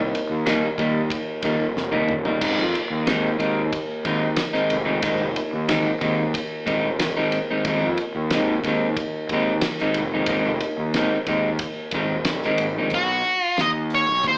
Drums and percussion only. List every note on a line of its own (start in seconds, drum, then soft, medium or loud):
0.15 ride medium
0.47 snare loud
0.47 ride medium
0.78 kick medium
0.78 ride medium
1.10 kick loud
1.10 ride medium
1.42 kick medium
1.42 ride medium
1.77 snare medium
1.93 high tom medium
2.09 mid tom medium
2.25 floor tom medium
2.41 kick loud
2.41 ride medium
2.41 crash medium
2.75 ride medium
3.07 snare loud
3.07 ride medium
3.40 kick medium
3.40 ride medium
3.73 kick loud
3.73 ride medium
4.05 kick medium
4.05 ride medium
4.36 snare loud
4.36 ride loud
4.54 snare soft
4.70 ride medium
5.02 kick loud
5.02 ride loud
5.36 ride medium
5.69 snare loud
5.69 ride medium
6.01 kick medium
6.01 ride medium
6.34 kick medium
6.34 ride medium
6.67 kick medium
6.67 ride medium
6.99 snare loud
6.99 ride loud
7.32 ride medium
7.65 kick loud
7.65 ride medium
7.97 ride medium
8.30 snare loud
8.30 ride medium
8.64 kick medium
8.64 ride medium
8.97 kick loud
8.97 ride medium
9.29 kick medium
9.29 ride medium
9.61 snare loud
9.61 ride loud
9.78 snare soft
9.94 ride medium
10.26 kick loud
10.26 ride loud
10.60 ride medium
10.94 snare medium
10.94 ride medium
11.27 kick medium
11.27 ride medium
11.59 kick loud
11.59 ride medium
11.91 kick medium
11.91 ride medium
12.25 snare loud
12.25 ride loud
12.42 snare soft
12.58 ride medium
12.90 kick loud
12.90 open hi-hat medium
13.24 open hi-hat soft
13.57 snare medium
13.57 open hi-hat medium
13.90 open hi-hat soft
14.23 kick loud
14.23 open hi-hat medium